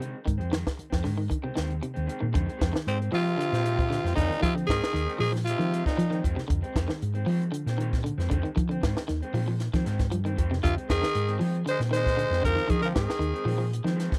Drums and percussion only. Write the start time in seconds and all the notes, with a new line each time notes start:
0.02 closed hi-hat
0.27 kick, closed hi-hat
0.41 closed hi-hat
0.53 snare, closed hi-hat
0.67 kick, snare, closed hi-hat
0.79 closed hi-hat
0.92 kick, snare
1.05 snare, open hi-hat
1.31 kick, closed hi-hat
1.57 snare, closed hi-hat
1.71 closed hi-hat
1.83 closed hi-hat
1.96 closed hi-hat
2.09 closed hi-hat
2.35 kick, closed hi-hat
2.49 closed hi-hat
2.61 kick, snare, closed hi-hat
2.76 snare
2.88 closed hi-hat
3.02 closed hi-hat
3.14 open hi-hat
3.27 closed hi-hat
3.40 closed hi-hat
3.54 snare, closed hi-hat
3.66 closed hi-hat
3.79 kick, closed hi-hat
3.92 snare, closed hi-hat
4.06 snare, closed hi-hat
4.17 kick, closed hi-hat
4.32 closed hi-hat
4.43 kick, closed hi-hat
4.58 closed hi-hat
4.69 kick, snare, closed hi-hat
4.83 snare
4.96 closed hi-hat
5.09 closed hi-hat
5.22 open hi-hat
5.36 snare
5.47 closed hi-hat
5.61 closed hi-hat
5.74 closed hi-hat
5.86 kick, snare, closed hi-hat
5.99 closed hi-hat
6.12 closed hi-hat
6.24 kick, closed hi-hat
6.38 snare
6.50 kick, closed hi-hat
6.64 closed hi-hat
6.76 kick, snare, closed hi-hat
6.89 snare
7.02 closed hi-hat
7.15 closed hi-hat
7.28 open hi-hat
7.42 closed hi-hat
7.54 closed hi-hat
7.67 snare, closed hi-hat
7.80 closed hi-hat
7.93 kick, snare, closed hi-hat
8.06 closed hi-hat
8.20 snare, closed hi-hat
8.31 kick, closed hi-hat
8.45 closed hi-hat
8.57 kick, closed hi-hat
8.71 closed hi-hat
8.83 kick, snare, closed hi-hat
8.97 snare
9.09 snare, closed hi-hat
9.23 closed hi-hat
9.35 open hi-hat
9.60 snare, closed hi-hat
9.74 kick, snare, closed hi-hat
9.86 snare, closed hi-hat
9.99 kick, snare, closed hi-hat
10.12 closed hi-hat
10.26 closed hi-hat
10.38 kick, closed hi-hat
10.53 snare
10.64 kick, closed hi-hat
10.78 closed hi-hat
10.90 kick, snare, closed hi-hat
11.03 snare
11.15 closed hi-hat
11.28 closed hi-hat
11.41 open hi-hat
11.55 closed hi-hat
11.67 closed hi-hat
11.81 snare, closed hi-hat
11.94 snare, closed hi-hat
12.06 kick, snare, closed hi-hat
12.19 closed hi-hat
12.33 snare, closed hi-hat
12.45 kick, closed hi-hat
12.58 closed hi-hat
12.70 kick, closed hi-hat
12.83 closed hi-hat
12.96 kick, snare, closed hi-hat
13.10 snare
13.22 closed hi-hat
13.36 closed hi-hat
13.48 open hi-hat
13.73 closed hi-hat
13.87 snare, closed hi-hat
14.00 snare, closed hi-hat
14.12 kick, snare, closed hi-hat